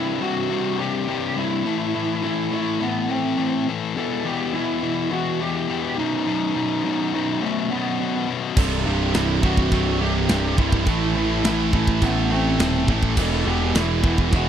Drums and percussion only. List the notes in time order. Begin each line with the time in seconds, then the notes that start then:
8.57 kick, crash, china
9.14 snare, china
9.43 kick
9.57 kick
9.71 kick, china
10.29 snare, china
10.58 kick
10.72 kick
10.86 kick, china
11.44 snare, china
11.73 kick
11.87 kick
12.02 kick, china
12.59 snare, china
12.88 kick
13.03 kick
13.17 kick, crash, china
13.75 snare, china
14.04 kick
14.18 kick
14.33 kick, china